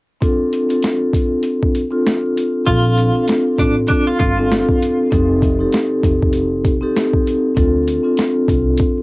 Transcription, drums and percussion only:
0.22 kick, closed hi-hat
0.53 closed hi-hat
0.70 closed hi-hat
0.83 snare, closed hi-hat
1.13 kick, closed hi-hat
1.43 closed hi-hat
1.63 kick
1.75 closed hi-hat
2.06 snare, closed hi-hat
2.37 closed hi-hat
2.67 kick, closed hi-hat, shaker
2.97 closed hi-hat, shaker
3.28 snare, closed hi-hat, shaker
3.58 kick, closed hi-hat, shaker
3.88 kick, closed hi-hat, shaker
4.20 kick, closed hi-hat, shaker
4.50 snare, closed hi-hat, shaker
4.69 kick
4.81 closed hi-hat, shaker
5.12 kick, closed hi-hat, shaker
5.42 kick, closed hi-hat, shaker
5.72 snare, closed hi-hat, shaker
6.03 kick, closed hi-hat, shaker
6.23 kick
6.33 closed hi-hat, shaker
6.65 kick, closed hi-hat, shaker
6.95 snare, closed hi-hat, shaker
7.13 kick
7.26 closed hi-hat, shaker
7.57 kick, closed hi-hat, shaker
7.87 closed hi-hat, shaker
8.17 snare, closed hi-hat, shaker
8.48 kick, closed hi-hat, shaker
8.78 kick, closed hi-hat, shaker

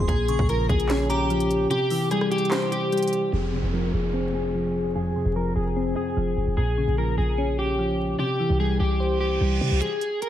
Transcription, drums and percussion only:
0.09 kick, closed hi-hat
0.28 closed hi-hat
0.39 kick
0.49 closed hi-hat
0.69 kick, closed hi-hat
0.80 closed hi-hat
0.89 snare, clap, closed hi-hat
1.10 closed hi-hat
1.30 closed hi-hat
1.40 closed hi-hat
1.51 closed hi-hat
1.71 closed hi-hat
1.91 open hi-hat
2.11 cross-stick, closed hi-hat
2.21 cross-stick
2.32 closed hi-hat
2.38 closed hi-hat
2.45 closed hi-hat
2.51 snare, clap, closed hi-hat
2.72 closed hi-hat
2.92 closed hi-hat
2.97 closed hi-hat
3.03 closed hi-hat
3.08 closed hi-hat
3.13 closed hi-hat
9.82 closed hi-hat
10.01 closed hi-hat
10.22 closed hi-hat

